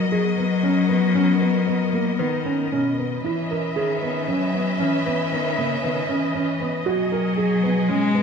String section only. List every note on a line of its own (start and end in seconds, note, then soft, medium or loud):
0.00 3.20 B3 medium
0.00 3.20 A#4 medium
0.00 3.20 D#5 medium
3.24 6.83 C#4 medium
3.24 6.83 B4 medium
3.24 8.23 D#5 medium
3.24 6.83 E5 medium
6.86 8.23 B2 medium
6.86 8.23 G#4 medium